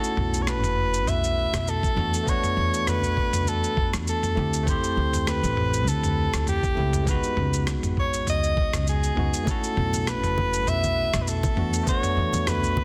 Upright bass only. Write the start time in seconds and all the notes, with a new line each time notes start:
0.17 B1
0.63 F#1
1.07 B1
1.53 B1
1.97 E2
2.57 E2
3.03 B1
3.47 E2
3.94 E2
4.37 D2
4.97 D2
5.43 A1
5.87 D2
6.33 D2
6.77 C#2
7.37 C#2
7.83 G#1
8.27 C#2
8.73 C#2
9.17 C#2
9.77 B1
10.23 F#1
10.67 B1
11.14 B1
11.57 E2
12.17 E2
12.63 B1